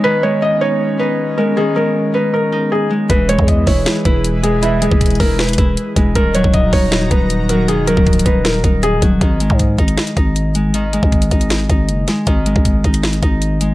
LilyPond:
<<
  \new Staff \with { instrumentName = "Felt piano" } { \time 4/4 \key gis \minor \tempo 4 = 157 b'8 cis''8 dis''8 cis''4 b'4 ais'8 | gis'8 ais'4 b'8 ais'4 gis'8 r8 | b'8 cis''8 dis''8 cis''4 b'4 gis'8 | e'8 gis'4 ais'8 b'2 |
ais'8 cis''8 dis''8 cis''4 b'4 ais'8 | gis'8 ais'4 b'8 ais'4 gis'8 r8 | r1 | r1 |
r1 | }
  \new Staff \with { instrumentName = "Analog synth pad" } { \time 4/4 \key gis \minor <gis b cis'>1~ | <gis b cis'>1 | <e e' gis' b'>1~ | <e e' gis' b'>1 |
<dis dis' fis' ais''>1~ | <dis dis' fis' ais''>1 | r1 | r1 |
r1 | }
  \new Staff \with { instrumentName = "Harp" } { \clef bass \time 4/4 \key gis \minor <dis dis'>8 gis4 dis'4 dis'4 gis8 | dis8 gis4 dis'4 dis'4 gis8 | e8 gis4 e'4 e'4 gis8 | e8 gis4 e'4 e'4 gis8 |
dis8 fis4 dis'4 dis'4 fis8 | dis8 fis4 dis'4 dis'4 fis8 | dis8 gis4 dis'4 dis'4 gis8 | dis8 gis4 dis'4 dis'4 gis8 |
dis8 gis4 dis'4 dis'4 gis8 | }
  \new Staff \with { instrumentName = "808-style bass" } { \clef bass \time 4/4 \key gis \minor r1 | r1 | e,,8. e,8. e,,8 r8 e,,4.~ | e,,8. e,,8. e,,4 e,,8 r8 e,,8 |
dis,,8. dis,,8. dis,,4 dis,,4. | e,,8. cis,,8. dis,,4 dis,,4 dis,,8 | gis,,8. gis,8. gis,,8 r8 gis,,4.~ | gis,,8. gis,,8. gis,,4 gis,,8 fis,,8 r8 |
gis,,8. gis,,8. gis,,4 gis,,4. | }
  \new DrumStaff \with { instrumentName = "Drums" } \drummode { \time 4/4 r4 r4 r4 r4 | r4 r4 r4 r4 | <hh bd>8 hh16 bd16 <hh bd>8 <hho bd>8 <hh sn>8 <hh bd>8 hh8 hh8 | hh8 hh16 bd16 <hh bd>32 hh32 hh32 hh32 <hho bd>8 <hh sn>32 hh32 hh32 hh32 <hh bd>8 hh8 <hh bd>8 |
<hh bd>8 hh16 bd16 <hh bd>8 <hho bd>8 <hh sn>8 <hh bd>8 hh8 hh8 | hh8 hh16 bd16 \tuplet 3/2 { <hh bd>16 hh16 hh16 <hh bd>16 r16 r16 } <hh sn>8 <hh bd>8 hh8 <hh bd>8 | <hh bd>8 hh16 bd16 <hh bd>8 <hh bd>16 hh16 <hh sn>16 hh16 <hh bd>8 hh8 hh8 | hh8 hh16 bd16 <hh bd>16 hh16 <hh bd>16 hh16 <hh sn>8 <hh bd>8 hh8 <hh sn>8 |
<hh bd>8 hh16 bd16 <hh bd>8 <hh bd>16 hh16 <hh sn>16 hh16 <hh bd>8 hh8 hh8 | }
>>